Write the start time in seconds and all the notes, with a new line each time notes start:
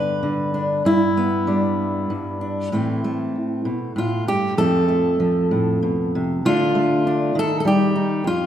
Already playing: G2 D3 B3 D4 B4
0.23 D3
0.54 D4
0.85 G2 E4
1.17 B3
1.47 G3 D4
2.10 G2
2.41 D4
2.72 A2 E3 A3 C4
3.04 A3
3.65 B2
3.96 A2 F4
4.27 G2 G4
4.57 F2 F3 A3 C4 A4
4.88 A3
5.20 F3
5.51 A2
5.83 B2
6.15 C3
6.45 D3 A3 D4 F4
6.75 A3
7.07 D4
7.35 D#3 A4
7.60 A4
7.65 G3 G4
7.96 D#4
8.24 F2 F4